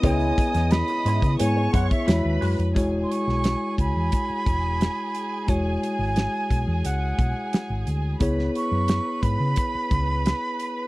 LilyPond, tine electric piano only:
\new Staff \with { instrumentName = "Tine electric piano" } { \time 4/4 \key e \major \tempo 4 = 88 <b e' gis' cis''>2 <b e' gis' cis''>4 <gis e' fis' cis''>4 | <gis e' fis' cis''>1 | <gis e' fis' cis''>1 | <b e' gis' cis''>1 | }